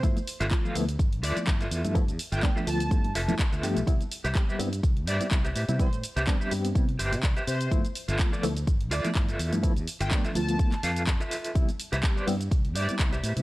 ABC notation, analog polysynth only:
X:1
M:4/4
L:1/16
Q:"Swing 16ths" 1/4=125
K:C
V:1 name="Analog polysynth"
z8 z2 d z4 z | z3 g g z a6 z4 | z8 z2 d z4 z | c z12 z c2 |
z8 z2 d z4 z | z3 g g z a6 z4 | z8 z2 d z4 z |]